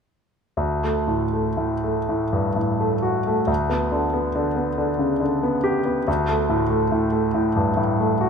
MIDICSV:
0, 0, Header, 1, 2, 480
1, 0, Start_track
1, 0, Key_signature, 2, "major"
1, 0, Tempo, 1006711
1, 277, Time_signature, 12, 3, 24, 8
1, 1229, Tempo, 916031
1, 1709, Tempo, 858369
1, 4394, End_track
2, 0, Start_track
2, 0, Title_t, "Grand piano"
2, 0, Program_c, 0, 0
2, 272, Note_on_c, 0, 38, 35
2, 391, Control_c, 0, 64, 127
2, 400, Note_on_c, 0, 57, 28
2, 513, Note_on_c, 0, 45, 28
2, 593, Note_off_c, 0, 57, 0
2, 633, Note_on_c, 0, 57, 30
2, 709, Note_off_c, 0, 45, 0
2, 750, Note_on_c, 0, 45, 29
2, 828, Note_off_c, 0, 57, 0
2, 876, Note_on_c, 0, 57, 26
2, 945, Note_off_c, 0, 45, 0
2, 996, Note_on_c, 0, 45, 31
2, 1066, Note_off_c, 0, 57, 0
2, 1109, Note_on_c, 0, 43, 28
2, 1182, Note_off_c, 0, 45, 0
2, 1221, Note_on_c, 0, 45, 28
2, 1226, Note_off_c, 0, 43, 0
2, 1345, Note_on_c, 0, 57, 29
2, 1421, Note_off_c, 0, 45, 0
2, 1463, Note_on_c, 0, 66, 32
2, 1541, Note_off_c, 0, 57, 0
2, 1593, Note_on_c, 0, 57, 30
2, 1657, Note_off_c, 0, 66, 0
2, 1685, Note_off_c, 0, 38, 0
2, 1698, Note_on_c, 0, 38, 41
2, 1709, Note_off_c, 0, 57, 0
2, 1717, Control_c, 0, 64, 0
2, 1817, Control_c, 0, 64, 127
2, 1822, Note_on_c, 0, 59, 29
2, 1946, Note_on_c, 0, 50, 33
2, 2018, Note_off_c, 0, 59, 0
2, 2069, Note_on_c, 0, 59, 33
2, 2139, Note_off_c, 0, 50, 0
2, 2191, Note_on_c, 0, 50, 35
2, 2259, Note_off_c, 0, 59, 0
2, 2305, Note_on_c, 0, 59, 31
2, 2380, Note_off_c, 0, 50, 0
2, 2429, Note_on_c, 0, 50, 35
2, 2498, Note_off_c, 0, 59, 0
2, 2547, Note_on_c, 0, 49, 32
2, 2621, Note_off_c, 0, 50, 0
2, 2666, Note_on_c, 0, 50, 35
2, 2668, Note_off_c, 0, 49, 0
2, 2794, Note_on_c, 0, 59, 34
2, 2861, Note_off_c, 0, 50, 0
2, 2907, Note_on_c, 0, 67, 35
2, 2986, Note_off_c, 0, 59, 0
2, 3029, Note_on_c, 0, 59, 34
2, 3103, Note_off_c, 0, 67, 0
2, 3126, Note_off_c, 0, 38, 0
2, 3152, Note_off_c, 0, 59, 0
2, 3153, Note_on_c, 0, 38, 42
2, 3163, Control_c, 0, 64, 0
2, 3246, Control_c, 0, 64, 127
2, 3272, Note_on_c, 0, 57, 35
2, 3387, Note_on_c, 0, 45, 37
2, 3464, Note_off_c, 0, 57, 0
2, 3501, Note_on_c, 0, 57, 34
2, 3581, Note_off_c, 0, 45, 0
2, 3625, Note_on_c, 0, 45, 35
2, 3697, Note_off_c, 0, 57, 0
2, 3736, Note_on_c, 0, 57, 31
2, 3817, Note_off_c, 0, 45, 0
2, 3862, Note_on_c, 0, 45, 36
2, 3931, Note_off_c, 0, 57, 0
2, 3984, Note_on_c, 0, 43, 32
2, 4054, Note_off_c, 0, 45, 0
2, 4101, Note_on_c, 0, 45, 37
2, 4104, Note_off_c, 0, 43, 0
2, 4227, Note_on_c, 0, 57, 34
2, 4296, Note_off_c, 0, 45, 0
2, 4345, Note_on_c, 0, 66, 36
2, 4394, Note_off_c, 0, 38, 0
2, 4394, Note_off_c, 0, 57, 0
2, 4394, Note_off_c, 0, 66, 0
2, 4394, End_track
0, 0, End_of_file